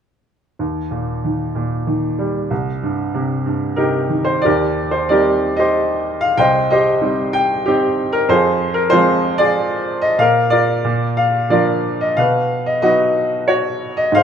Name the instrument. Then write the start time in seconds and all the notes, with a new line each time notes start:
grand piano
0.59 D#2
0.91 A#2
1.24 D#3
1.55 A#2
1.87 D#3
2.19 G3
2.51 C2
2.83 G2
3.14 C3
3.46 G2
3.76 C3 D#4 G4 A#4
4.09 D#3
4.25 C5
4.42 G4 A#4 D5
4.46 D#2
4.91 C5
5.09 G3 C4 D#4 G4 A#4 D5
5.57 G4 C5 D#5
6.21 F5
6.37 C2 C5 D#5 G5
6.70 G4 C5 D#5
7.01 G3 C4 D#4
7.33 G5
7.66 C4 D#4 G4
8.13 A#4
8.29 F2 F4 G#4 C5
8.74 A#4
8.90 F3 G#3 C4 F4 G#4 C5
9.38 F4 G#4 D5
10.02 D#5
10.18 A#2 A#4 F5
10.50 F4 A#4 D5
10.84 A#2
11.17 F5
11.50 F3 A#3 D4 F4 A#4 D5
12.01 D#5
12.17 B2 B4 F5
12.66 D#5
12.82 F#3 B3 D#4 F#4 B4 D#5
13.48 F#4 C#5
13.97 D#5
14.12 G#2 C5 F5